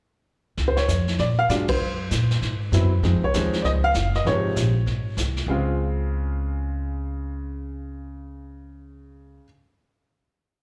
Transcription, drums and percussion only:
0.57 brush sweep soft
0.57 kick soft
0.57 snare soft
0.77 snare medium
0.88 kick soft
0.88 snare medium
0.88 hi-hat pedal medium
1.07 snare soft
1.18 brush sweep soft
1.18 kick soft
1.18 snare soft
1.49 kick soft
1.49 snare soft
1.49 hi-hat pedal soft
1.68 kick medium
1.68 ride medium
1.80 brush sweep soft
2.11 kick soft
2.11 snare medium
2.11 hi-hat pedal medium
2.30 snare soft
2.42 brush sweep soft
2.42 kick soft
2.42 snare soft
2.72 kick soft
2.72 snare medium
2.72 hi-hat pedal soft
3.03 brush sweep medium
3.03 kick soft
3.03 snare soft
3.34 kick soft
3.34 snare medium
3.34 hi-hat pedal medium
3.53 snare soft
3.64 brush sweep soft
3.64 kick soft
3.64 snare soft
3.94 kick soft
3.94 snare medium
3.94 hi-hat pedal soft
4.14 snare soft
4.26 brush sweep soft
4.26 kick soft
4.26 snare soft
4.56 kick soft
4.56 snare medium
4.56 hi-hat pedal medium
4.87 brush sweep soft
4.87 kick soft
4.87 snare soft
5.17 kick soft
5.17 snare medium
5.17 hi-hat pedal medium
5.37 snare soft

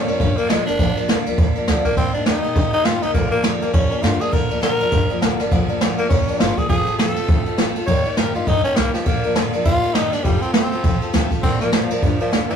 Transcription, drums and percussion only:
0.08 ride medium
0.20 kick loud
0.20 ride medium
0.38 ride medium
0.50 snare loud
0.50 ride medium
0.67 snare soft
0.67 ride medium
0.79 kick loud
0.79 ride medium
0.97 ride medium
1.09 snare loud
1.09 ride medium
1.26 ride medium
1.38 kick loud
1.38 ride loud
1.55 ride medium
1.68 snare medium
1.68 ride medium
1.85 kick medium
1.85 ride medium
1.97 kick loud
1.97 ride loud
2.14 ride medium
2.26 snare loud
2.26 ride medium
2.44 ride medium
2.56 kick loud
2.56 ride medium
2.73 ride medium
2.85 snare loud
2.85 ride medium
3.02 ride medium
3.14 kick loud
3.14 ride medium
3.32 ride medium
3.44 snare loud
3.44 ride medium
3.62 ride medium
3.74 kick loud
3.74 ride medium
3.92 ride medium
4.04 snare loud
4.04 ride medium
4.21 ride medium
4.33 kick loud
4.33 ride medium
4.51 ride medium
4.63 snare loud
4.63 ride medium
4.80 ride medium
4.92 kick loud
4.92 ride loud
5.10 ride medium
5.22 snare loud
5.22 ride medium
5.40 snare soft
5.40 ride medium
5.51 kick loud
5.51 ride medium
5.69 ride medium
5.81 snare loud
5.81 ride medium
5.98 ride medium
6.10 kick loud
6.10 ride medium
6.28 ride medium
6.40 snare loud
6.40 ride medium
6.58 kick medium
6.58 ride medium
6.70 kick loud
6.70 ride medium
6.87 ride medium
6.99 snare loud
6.99 ride medium
7.16 ride medium
7.29 kick loud
7.29 ride medium
7.46 ride medium
7.58 snare loud
7.58 ride medium
7.76 ride medium
7.87 kick loud
7.87 ride loud
8.05 ride medium
8.17 snare loud
8.17 ride medium
8.35 ride medium
8.47 kick loud
8.47 ride medium
8.64 ride medium
8.76 snare loud
8.76 ride medium
8.94 snare soft
8.94 ride medium
9.06 kick loud
9.06 ride medium
9.23 ride medium
9.36 snare loud
9.36 ride medium
9.53 ride medium
9.65 kick loud
9.65 ride medium
9.83 ride medium
9.95 snare loud
9.95 ride medium
10.13 snare soft
10.13 ride medium
10.25 kick loud
10.25 ride medium
10.42 ride medium
10.54 snare loud
10.54 ride medium
10.72 ride medium
10.84 kick loud
10.84 ride medium
11.02 ride medium
11.14 snare loud
11.14 ride medium
11.31 kick medium
11.31 ride medium
11.43 kick loud
11.43 crash loud
11.61 snare soft
11.61 ride medium
11.73 snare loud
11.73 ride medium
11.90 ride medium
12.02 kick loud
12.02 ride medium
12.20 ride medium
12.33 snare medium
12.33 ride medium
12.50 ride medium

